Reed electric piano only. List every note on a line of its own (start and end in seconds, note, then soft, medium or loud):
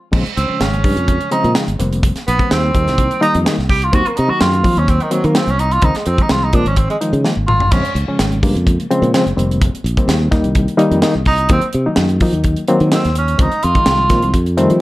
0.12 0.23 C#3 medium
0.12 0.24 F3 medium
0.12 0.24 G#3 medium
0.12 0.24 C4 loud
0.25 0.31 G#3 soft
0.25 0.31 C#4 soft
0.48 0.80 C#3 medium
0.48 0.80 F3 medium
0.48 0.80 G#3 medium
0.48 0.80 C#4 medium
0.84 1.27 C#3 medium
0.84 1.26 F3 medium
0.84 1.27 G#3 medium
0.84 1.27 C#4 medium
1.31 1.52 C#3 medium
1.31 1.53 F3 medium
1.31 1.53 G#3 medium
1.31 1.53 C4 loud
1.55 1.67 C#3 medium
1.55 1.66 F3 medium
1.55 1.67 G#3 medium
1.55 1.67 D#4 medium
1.69 1.74 G#3 soft
1.69 1.74 D#4 soft
1.79 2.11 D#3 medium
1.79 2.11 G3 medium
1.79 2.11 A#3 medium
1.79 2.11 C4 medium
2.16 2.21 A#3 soft
2.16 2.22 C4 soft
2.40 2.70 D#3 medium
2.40 2.70 G3 medium
2.40 2.70 A#3 medium
2.40 2.71 C4 medium
2.74 3.16 D#3 medium
2.74 3.16 G3 medium
2.74 3.16 A#3 medium
2.74 3.16 D#4 medium
3.21 3.43 D#3 medium
3.21 3.42 G3 medium
3.21 3.42 A#3 medium
3.21 3.43 D#4 loud
3.45 3.56 D#3 medium
3.45 3.56 G3 medium
3.45 3.56 A#3 medium
3.45 3.56 D#4 medium
3.81 3.86 A#3 soft
3.81 3.87 C4 soft
3.92 4.04 D#3 medium
3.92 4.03 F#3 medium
3.92 4.03 A#3 medium
3.92 4.03 C4 loud
4.04 4.10 A#3 soft
4.04 4.10 C4 soft
4.28 4.59 D#3 medium
4.28 4.60 F#3 medium
4.28 4.59 A#3 medium
4.28 4.59 D#4 medium
4.63 5.06 D#3 medium
4.63 5.06 F#3 medium
4.63 5.06 A#3 medium
4.63 5.06 C4 medium
5.11 5.32 D#3 medium
5.11 5.32 F#3 medium
5.11 5.32 A#3 medium
5.11 5.32 C4 loud
5.34 5.46 D#3 medium
5.34 5.46 F#3 medium
5.34 5.46 A#3 medium
5.34 5.46 D#4 medium
5.48 5.53 A#3 soft
5.48 5.53 C4 soft
5.73 5.77 A#3 soft
5.73 5.78 D#4 soft
5.83 5.93 D#3 medium
5.83 5.94 F3 medium
5.83 5.94 G#3 medium
5.83 5.94 C4 medium
5.97 6.01 G#3 soft
5.97 6.02 D#4 soft
6.19 6.50 D#3 medium
6.19 6.50 F3 medium
6.19 6.50 G#3 medium
6.19 6.50 C4 medium
6.53 6.96 D#3 medium
6.53 6.95 F3 medium
6.53 6.95 G#3 medium
6.53 6.96 C4 medium
7.01 7.22 D#3 medium
7.01 7.22 F3 medium
7.01 7.22 G#3 medium
7.01 7.22 D#4 loud
7.24 7.35 D#3 medium
7.24 7.35 F3 medium
7.24 7.35 G#3 medium
7.24 7.36 A#3 medium
7.39 7.43 G#3 soft
7.39 7.43 A#3 soft
7.61 7.66 G#3 soft
7.61 7.66 D#4 soft
7.72 7.83 C#3 medium
7.72 7.83 F3 medium
7.72 7.83 G#3 medium
7.72 7.83 C4 medium
7.85 7.90 G#3 soft
8.08 8.39 C#3 medium
8.08 8.39 F3 medium
8.08 8.39 G#3 medium
8.08 8.39 C#4 loud
8.43 8.85 C#3 medium
8.43 8.85 F3 medium
8.43 8.85 G#3 medium
8.43 8.85 A#3 medium
8.90 9.12 C#3 loud
8.90 9.12 F3 loud
8.90 9.12 G#3 loud
8.90 9.11 C4 loud
9.14 9.25 C#3 medium
9.14 9.25 F3 medium
9.14 9.25 G#3 medium
9.14 9.24 C4 loud
9.26 9.31 G#3 soft
9.26 9.31 C4 soft
9.37 9.69 D#3 medium
9.37 9.69 G3 medium
9.37 9.69 A#3 medium
9.37 9.69 C4 medium
9.75 9.79 A#3 soft
9.75 9.80 C4 soft
9.98 10.29 D#3 medium
9.98 10.28 G3 medium
9.98 10.29 A#3 medium
9.98 10.29 C4 medium
10.31 10.74 D#3 medium
10.31 10.74 G3 medium
10.31 10.74 A#3 medium
10.31 10.74 D#4 loud
10.77 10.99 D#3 loud
10.77 10.99 G3 loud
10.77 10.99 A#3 loud
10.77 11.00 D#4 loud
11.03 11.14 D#3 medium
11.03 11.14 G3 medium
11.03 11.14 A#3 medium
11.03 11.14 D#4 loud
11.39 11.44 A#3 soft
11.39 11.44 C4 soft
11.50 11.61 D#3 medium
11.50 11.61 F#3 medium
11.50 11.61 A#3 medium
11.50 11.61 C4 medium
11.86 12.17 D#3 medium
11.86 12.17 F#3 medium
11.86 12.17 A#3 medium
11.86 12.17 D#4 loud
12.22 12.63 D#3 medium
12.22 12.63 F#3 medium
12.22 12.64 A#3 medium
12.22 12.64 D#4 medium
12.68 12.90 D#3 loud
12.68 12.89 F#3 loud
12.68 12.89 A#3 loud
12.68 12.89 C4 loud
12.93 13.03 D#3 medium
12.93 13.03 F#3 medium
12.93 13.03 A#3 medium
12.93 13.03 D#4 medium
13.05 13.10 A#3 soft
13.05 13.10 D#4 soft
13.29 13.34 A#3 soft
13.29 13.34 D#4 soft
13.38 13.49 D#3 medium
13.38 13.50 F3 medium
13.38 13.50 G#3 medium
13.38 13.50 C4 loud
13.52 13.57 C#4 soft
13.75 14.06 D#3 medium
13.75 14.06 F3 medium
13.75 14.07 G#3 medium
13.75 14.06 D#4 medium
14.10 14.34 D#3 medium
14.10 14.34 F3 medium
14.10 14.34 G#3 medium
14.10 14.34 C4 medium
14.57 14.78 D#3 loud
14.57 14.78 G3 loud
14.57 14.78 A3 loud
14.57 14.78 C4 loud